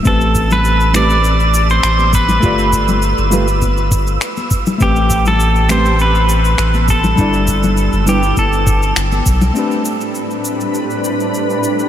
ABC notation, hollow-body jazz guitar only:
X:1
M:4/4
L:1/8
Q:1/4=101
K:Am
V:1 name="Hollow-body jazz guitar"
[A,CGB]3 [A,CGB] z4 | [A,FGd]3 [A,FGB] z4 | [A,CGB]3 [A,CGB] z4 | [G,DEd]3 [G,DEB] z4 |
[A,CDGB]8 |]